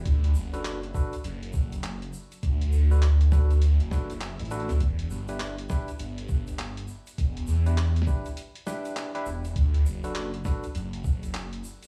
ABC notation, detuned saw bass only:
X:1
M:4/4
L:1/16
Q:"Swing 16ths" 1/4=101
K:Dmix
V:1 name="Detuned saw bass" clef=bass
D,,2 F,,,4 z2 F,,,3 F,,,3 z2 | D,,2 D,,4 D,,3 F,,,4 A,,,2 D,, | E,,,2 G,,,4 z2 G,,,3 G,,,3 z2 | E,,,2 E,,4 z8 E,,,2 |
D,,2 F,,,4 z2 F,,,3 F,,,3 z2 |]